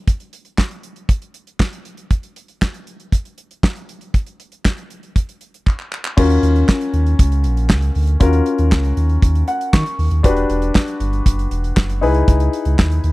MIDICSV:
0, 0, Header, 1, 4, 480
1, 0, Start_track
1, 0, Tempo, 508475
1, 70, Time_signature, 4, 2, 24, 8
1, 12389, End_track
2, 0, Start_track
2, 0, Title_t, "Grand piano"
2, 0, Program_c, 0, 0
2, 5824, Note_on_c, 0, 61, 86
2, 5828, Note_on_c, 0, 65, 72
2, 5832, Note_on_c, 0, 66, 66
2, 5839, Note_on_c, 0, 70, 86
2, 7709, Note_off_c, 0, 61, 0
2, 7711, Note_off_c, 0, 65, 0
2, 7713, Note_off_c, 0, 66, 0
2, 7717, Note_off_c, 0, 70, 0
2, 7741, Note_on_c, 0, 61, 71
2, 7745, Note_on_c, 0, 65, 67
2, 7750, Note_on_c, 0, 66, 68
2, 7757, Note_on_c, 0, 70, 91
2, 8947, Note_on_c, 0, 78, 77
2, 9171, Note_off_c, 0, 78, 0
2, 9186, Note_on_c, 0, 85, 74
2, 9627, Note_off_c, 0, 61, 0
2, 9630, Note_off_c, 0, 65, 0
2, 9632, Note_off_c, 0, 66, 0
2, 9634, Note_off_c, 0, 85, 0
2, 9635, Note_off_c, 0, 70, 0
2, 9659, Note_on_c, 0, 62, 82
2, 9665, Note_on_c, 0, 66, 77
2, 9670, Note_on_c, 0, 67, 71
2, 9676, Note_on_c, 0, 71, 89
2, 11310, Note_off_c, 0, 62, 0
2, 11313, Note_off_c, 0, 66, 0
2, 11316, Note_off_c, 0, 67, 0
2, 11319, Note_off_c, 0, 71, 0
2, 11341, Note_on_c, 0, 63, 83
2, 11345, Note_on_c, 0, 64, 75
2, 11349, Note_on_c, 0, 68, 81
2, 11355, Note_on_c, 0, 71, 90
2, 12389, Note_off_c, 0, 63, 0
2, 12389, Note_off_c, 0, 64, 0
2, 12389, Note_off_c, 0, 68, 0
2, 12389, Note_off_c, 0, 71, 0
2, 12389, End_track
3, 0, Start_track
3, 0, Title_t, "Sub bass"
3, 0, Program_c, 1, 38
3, 5829, Note_on_c, 1, 39, 127
3, 6027, Note_off_c, 1, 39, 0
3, 6067, Note_on_c, 1, 39, 109
3, 6266, Note_off_c, 1, 39, 0
3, 6545, Note_on_c, 1, 39, 101
3, 6745, Note_off_c, 1, 39, 0
3, 6790, Note_on_c, 1, 37, 94
3, 7032, Note_on_c, 1, 34, 82
3, 7046, Note_off_c, 1, 37, 0
3, 7264, Note_on_c, 1, 37, 105
3, 7278, Note_off_c, 1, 34, 0
3, 7464, Note_off_c, 1, 37, 0
3, 7511, Note_on_c, 1, 38, 105
3, 7709, Note_off_c, 1, 38, 0
3, 7747, Note_on_c, 1, 39, 118
3, 7946, Note_off_c, 1, 39, 0
3, 8107, Note_on_c, 1, 39, 100
3, 8231, Note_on_c, 1, 37, 99
3, 8245, Note_off_c, 1, 39, 0
3, 8428, Note_off_c, 1, 37, 0
3, 8466, Note_on_c, 1, 39, 97
3, 8666, Note_off_c, 1, 39, 0
3, 8708, Note_on_c, 1, 39, 107
3, 8907, Note_off_c, 1, 39, 0
3, 9188, Note_on_c, 1, 51, 105
3, 9288, Note_off_c, 1, 51, 0
3, 9428, Note_on_c, 1, 39, 99
3, 9528, Note_off_c, 1, 39, 0
3, 9546, Note_on_c, 1, 39, 86
3, 9647, Note_off_c, 1, 39, 0
3, 9667, Note_on_c, 1, 28, 105
3, 9866, Note_off_c, 1, 28, 0
3, 9910, Note_on_c, 1, 28, 111
3, 10108, Note_off_c, 1, 28, 0
3, 10386, Note_on_c, 1, 31, 96
3, 10585, Note_off_c, 1, 31, 0
3, 10628, Note_on_c, 1, 30, 105
3, 10827, Note_off_c, 1, 30, 0
3, 10867, Note_on_c, 1, 28, 100
3, 11066, Note_off_c, 1, 28, 0
3, 11107, Note_on_c, 1, 30, 95
3, 11346, Note_on_c, 1, 37, 115
3, 11360, Note_off_c, 1, 30, 0
3, 11546, Note_off_c, 1, 37, 0
3, 11591, Note_on_c, 1, 37, 115
3, 11789, Note_off_c, 1, 37, 0
3, 11948, Note_on_c, 1, 37, 102
3, 12047, Note_off_c, 1, 37, 0
3, 12072, Note_on_c, 1, 39, 93
3, 12269, Note_off_c, 1, 39, 0
3, 12308, Note_on_c, 1, 39, 104
3, 12389, Note_off_c, 1, 39, 0
3, 12389, End_track
4, 0, Start_track
4, 0, Title_t, "Drums"
4, 70, Note_on_c, 9, 42, 84
4, 71, Note_on_c, 9, 36, 114
4, 165, Note_off_c, 9, 36, 0
4, 165, Note_off_c, 9, 42, 0
4, 189, Note_on_c, 9, 42, 45
4, 283, Note_off_c, 9, 42, 0
4, 310, Note_on_c, 9, 42, 73
4, 405, Note_off_c, 9, 42, 0
4, 424, Note_on_c, 9, 42, 44
4, 519, Note_off_c, 9, 42, 0
4, 549, Note_on_c, 9, 38, 95
4, 550, Note_on_c, 9, 39, 77
4, 551, Note_on_c, 9, 36, 90
4, 644, Note_off_c, 9, 38, 0
4, 644, Note_off_c, 9, 39, 0
4, 645, Note_off_c, 9, 36, 0
4, 668, Note_on_c, 9, 42, 49
4, 762, Note_off_c, 9, 42, 0
4, 788, Note_on_c, 9, 42, 68
4, 882, Note_off_c, 9, 42, 0
4, 906, Note_on_c, 9, 42, 39
4, 1001, Note_off_c, 9, 42, 0
4, 1028, Note_on_c, 9, 36, 111
4, 1031, Note_on_c, 9, 42, 104
4, 1123, Note_off_c, 9, 36, 0
4, 1125, Note_off_c, 9, 42, 0
4, 1150, Note_on_c, 9, 42, 45
4, 1244, Note_off_c, 9, 42, 0
4, 1267, Note_on_c, 9, 42, 62
4, 1361, Note_off_c, 9, 42, 0
4, 1389, Note_on_c, 9, 42, 44
4, 1483, Note_off_c, 9, 42, 0
4, 1508, Note_on_c, 9, 36, 105
4, 1511, Note_on_c, 9, 38, 110
4, 1511, Note_on_c, 9, 39, 82
4, 1602, Note_off_c, 9, 36, 0
4, 1605, Note_off_c, 9, 38, 0
4, 1605, Note_off_c, 9, 39, 0
4, 1630, Note_on_c, 9, 42, 56
4, 1724, Note_off_c, 9, 42, 0
4, 1748, Note_on_c, 9, 42, 77
4, 1842, Note_off_c, 9, 42, 0
4, 1863, Note_on_c, 9, 42, 50
4, 1958, Note_off_c, 9, 42, 0
4, 1987, Note_on_c, 9, 42, 81
4, 1989, Note_on_c, 9, 36, 102
4, 2082, Note_off_c, 9, 42, 0
4, 2083, Note_off_c, 9, 36, 0
4, 2107, Note_on_c, 9, 42, 46
4, 2201, Note_off_c, 9, 42, 0
4, 2230, Note_on_c, 9, 42, 77
4, 2324, Note_off_c, 9, 42, 0
4, 2345, Note_on_c, 9, 42, 45
4, 2439, Note_off_c, 9, 42, 0
4, 2471, Note_on_c, 9, 36, 96
4, 2471, Note_on_c, 9, 38, 100
4, 2472, Note_on_c, 9, 39, 84
4, 2566, Note_off_c, 9, 36, 0
4, 2566, Note_off_c, 9, 38, 0
4, 2566, Note_off_c, 9, 39, 0
4, 2589, Note_on_c, 9, 42, 47
4, 2684, Note_off_c, 9, 42, 0
4, 2710, Note_on_c, 9, 42, 61
4, 2805, Note_off_c, 9, 42, 0
4, 2830, Note_on_c, 9, 42, 41
4, 2924, Note_off_c, 9, 42, 0
4, 2949, Note_on_c, 9, 36, 103
4, 2954, Note_on_c, 9, 42, 102
4, 3044, Note_off_c, 9, 36, 0
4, 3048, Note_off_c, 9, 42, 0
4, 3070, Note_on_c, 9, 42, 47
4, 3165, Note_off_c, 9, 42, 0
4, 3188, Note_on_c, 9, 42, 67
4, 3282, Note_off_c, 9, 42, 0
4, 3312, Note_on_c, 9, 42, 44
4, 3406, Note_off_c, 9, 42, 0
4, 3430, Note_on_c, 9, 36, 111
4, 3435, Note_on_c, 9, 38, 110
4, 3436, Note_on_c, 9, 39, 76
4, 3524, Note_off_c, 9, 36, 0
4, 3530, Note_off_c, 9, 38, 0
4, 3530, Note_off_c, 9, 39, 0
4, 3551, Note_on_c, 9, 42, 48
4, 3645, Note_off_c, 9, 42, 0
4, 3672, Note_on_c, 9, 42, 75
4, 3766, Note_off_c, 9, 42, 0
4, 3785, Note_on_c, 9, 42, 47
4, 3880, Note_off_c, 9, 42, 0
4, 3909, Note_on_c, 9, 36, 105
4, 3909, Note_on_c, 9, 42, 82
4, 4003, Note_off_c, 9, 42, 0
4, 4004, Note_off_c, 9, 36, 0
4, 4026, Note_on_c, 9, 42, 50
4, 4120, Note_off_c, 9, 42, 0
4, 4151, Note_on_c, 9, 42, 73
4, 4246, Note_off_c, 9, 42, 0
4, 4265, Note_on_c, 9, 42, 43
4, 4360, Note_off_c, 9, 42, 0
4, 4390, Note_on_c, 9, 38, 93
4, 4391, Note_on_c, 9, 39, 82
4, 4392, Note_on_c, 9, 36, 101
4, 4485, Note_off_c, 9, 38, 0
4, 4485, Note_off_c, 9, 39, 0
4, 4486, Note_off_c, 9, 36, 0
4, 4510, Note_on_c, 9, 42, 49
4, 4604, Note_off_c, 9, 42, 0
4, 4629, Note_on_c, 9, 42, 67
4, 4723, Note_off_c, 9, 42, 0
4, 4748, Note_on_c, 9, 42, 38
4, 4843, Note_off_c, 9, 42, 0
4, 4869, Note_on_c, 9, 36, 104
4, 4872, Note_on_c, 9, 42, 97
4, 4964, Note_off_c, 9, 36, 0
4, 4966, Note_off_c, 9, 42, 0
4, 4992, Note_on_c, 9, 42, 46
4, 5086, Note_off_c, 9, 42, 0
4, 5106, Note_on_c, 9, 42, 63
4, 5200, Note_off_c, 9, 42, 0
4, 5232, Note_on_c, 9, 42, 48
4, 5327, Note_off_c, 9, 42, 0
4, 5350, Note_on_c, 9, 36, 108
4, 5353, Note_on_c, 9, 39, 49
4, 5444, Note_off_c, 9, 36, 0
4, 5448, Note_off_c, 9, 39, 0
4, 5471, Note_on_c, 9, 39, 54
4, 5565, Note_off_c, 9, 39, 0
4, 5591, Note_on_c, 9, 39, 78
4, 5685, Note_off_c, 9, 39, 0
4, 5710, Note_on_c, 9, 39, 84
4, 5804, Note_off_c, 9, 39, 0
4, 5829, Note_on_c, 9, 49, 109
4, 5830, Note_on_c, 9, 36, 121
4, 5923, Note_off_c, 9, 49, 0
4, 5924, Note_off_c, 9, 36, 0
4, 5949, Note_on_c, 9, 42, 54
4, 6044, Note_off_c, 9, 42, 0
4, 6071, Note_on_c, 9, 42, 82
4, 6166, Note_off_c, 9, 42, 0
4, 6189, Note_on_c, 9, 42, 51
4, 6284, Note_off_c, 9, 42, 0
4, 6312, Note_on_c, 9, 38, 109
4, 6313, Note_on_c, 9, 36, 109
4, 6313, Note_on_c, 9, 39, 91
4, 6407, Note_off_c, 9, 36, 0
4, 6407, Note_off_c, 9, 38, 0
4, 6407, Note_off_c, 9, 39, 0
4, 6431, Note_on_c, 9, 42, 58
4, 6525, Note_off_c, 9, 42, 0
4, 6548, Note_on_c, 9, 42, 66
4, 6643, Note_off_c, 9, 42, 0
4, 6669, Note_on_c, 9, 42, 43
4, 6763, Note_off_c, 9, 42, 0
4, 6789, Note_on_c, 9, 36, 122
4, 6792, Note_on_c, 9, 42, 112
4, 6884, Note_off_c, 9, 36, 0
4, 6887, Note_off_c, 9, 42, 0
4, 6909, Note_on_c, 9, 42, 55
4, 7003, Note_off_c, 9, 42, 0
4, 7022, Note_on_c, 9, 42, 75
4, 7117, Note_off_c, 9, 42, 0
4, 7148, Note_on_c, 9, 42, 48
4, 7242, Note_off_c, 9, 42, 0
4, 7265, Note_on_c, 9, 38, 114
4, 7266, Note_on_c, 9, 36, 127
4, 7266, Note_on_c, 9, 39, 91
4, 7360, Note_off_c, 9, 38, 0
4, 7360, Note_off_c, 9, 39, 0
4, 7361, Note_off_c, 9, 36, 0
4, 7383, Note_on_c, 9, 42, 62
4, 7478, Note_off_c, 9, 42, 0
4, 7506, Note_on_c, 9, 46, 85
4, 7601, Note_off_c, 9, 46, 0
4, 7620, Note_on_c, 9, 42, 62
4, 7714, Note_off_c, 9, 42, 0
4, 7744, Note_on_c, 9, 42, 96
4, 7747, Note_on_c, 9, 36, 121
4, 7839, Note_off_c, 9, 42, 0
4, 7842, Note_off_c, 9, 36, 0
4, 7863, Note_on_c, 9, 42, 56
4, 7957, Note_off_c, 9, 42, 0
4, 7986, Note_on_c, 9, 42, 76
4, 8080, Note_off_c, 9, 42, 0
4, 8104, Note_on_c, 9, 42, 49
4, 8198, Note_off_c, 9, 42, 0
4, 8231, Note_on_c, 9, 36, 118
4, 8231, Note_on_c, 9, 38, 109
4, 8231, Note_on_c, 9, 39, 89
4, 8325, Note_off_c, 9, 36, 0
4, 8325, Note_off_c, 9, 38, 0
4, 8326, Note_off_c, 9, 39, 0
4, 8348, Note_on_c, 9, 42, 58
4, 8443, Note_off_c, 9, 42, 0
4, 8468, Note_on_c, 9, 42, 68
4, 8563, Note_off_c, 9, 42, 0
4, 8585, Note_on_c, 9, 42, 43
4, 8680, Note_off_c, 9, 42, 0
4, 8708, Note_on_c, 9, 36, 108
4, 8713, Note_on_c, 9, 42, 108
4, 8802, Note_off_c, 9, 36, 0
4, 8807, Note_off_c, 9, 42, 0
4, 8829, Note_on_c, 9, 42, 53
4, 8923, Note_off_c, 9, 42, 0
4, 8945, Note_on_c, 9, 42, 69
4, 9040, Note_off_c, 9, 42, 0
4, 9072, Note_on_c, 9, 42, 52
4, 9166, Note_off_c, 9, 42, 0
4, 9189, Note_on_c, 9, 36, 127
4, 9193, Note_on_c, 9, 38, 113
4, 9194, Note_on_c, 9, 39, 95
4, 9283, Note_off_c, 9, 36, 0
4, 9288, Note_off_c, 9, 38, 0
4, 9288, Note_off_c, 9, 39, 0
4, 9310, Note_on_c, 9, 42, 60
4, 9404, Note_off_c, 9, 42, 0
4, 9433, Note_on_c, 9, 46, 82
4, 9527, Note_off_c, 9, 46, 0
4, 9546, Note_on_c, 9, 42, 61
4, 9640, Note_off_c, 9, 42, 0
4, 9669, Note_on_c, 9, 36, 122
4, 9669, Note_on_c, 9, 42, 90
4, 9763, Note_off_c, 9, 36, 0
4, 9763, Note_off_c, 9, 42, 0
4, 9785, Note_on_c, 9, 42, 55
4, 9880, Note_off_c, 9, 42, 0
4, 9909, Note_on_c, 9, 42, 82
4, 10003, Note_off_c, 9, 42, 0
4, 10024, Note_on_c, 9, 42, 52
4, 10119, Note_off_c, 9, 42, 0
4, 10149, Note_on_c, 9, 38, 115
4, 10150, Note_on_c, 9, 39, 86
4, 10151, Note_on_c, 9, 36, 99
4, 10244, Note_off_c, 9, 38, 0
4, 10244, Note_off_c, 9, 39, 0
4, 10245, Note_off_c, 9, 36, 0
4, 10269, Note_on_c, 9, 42, 57
4, 10363, Note_off_c, 9, 42, 0
4, 10387, Note_on_c, 9, 42, 76
4, 10482, Note_off_c, 9, 42, 0
4, 10507, Note_on_c, 9, 42, 41
4, 10601, Note_off_c, 9, 42, 0
4, 10629, Note_on_c, 9, 36, 107
4, 10631, Note_on_c, 9, 42, 111
4, 10723, Note_off_c, 9, 36, 0
4, 10725, Note_off_c, 9, 42, 0
4, 10752, Note_on_c, 9, 42, 55
4, 10846, Note_off_c, 9, 42, 0
4, 10867, Note_on_c, 9, 42, 76
4, 10962, Note_off_c, 9, 42, 0
4, 10989, Note_on_c, 9, 42, 49
4, 11084, Note_off_c, 9, 42, 0
4, 11109, Note_on_c, 9, 36, 113
4, 11110, Note_on_c, 9, 38, 118
4, 11110, Note_on_c, 9, 39, 91
4, 11203, Note_off_c, 9, 36, 0
4, 11204, Note_off_c, 9, 38, 0
4, 11205, Note_off_c, 9, 39, 0
4, 11229, Note_on_c, 9, 42, 67
4, 11323, Note_off_c, 9, 42, 0
4, 11353, Note_on_c, 9, 46, 77
4, 11447, Note_off_c, 9, 46, 0
4, 11464, Note_on_c, 9, 42, 53
4, 11559, Note_off_c, 9, 42, 0
4, 11591, Note_on_c, 9, 36, 125
4, 11591, Note_on_c, 9, 42, 90
4, 11685, Note_off_c, 9, 42, 0
4, 11686, Note_off_c, 9, 36, 0
4, 11707, Note_on_c, 9, 42, 55
4, 11801, Note_off_c, 9, 42, 0
4, 11832, Note_on_c, 9, 42, 78
4, 11926, Note_off_c, 9, 42, 0
4, 11945, Note_on_c, 9, 42, 51
4, 12039, Note_off_c, 9, 42, 0
4, 12072, Note_on_c, 9, 38, 107
4, 12073, Note_on_c, 9, 36, 113
4, 12073, Note_on_c, 9, 39, 90
4, 12166, Note_off_c, 9, 38, 0
4, 12167, Note_off_c, 9, 36, 0
4, 12167, Note_off_c, 9, 39, 0
4, 12191, Note_on_c, 9, 42, 58
4, 12285, Note_off_c, 9, 42, 0
4, 12308, Note_on_c, 9, 42, 73
4, 12389, Note_off_c, 9, 42, 0
4, 12389, End_track
0, 0, End_of_file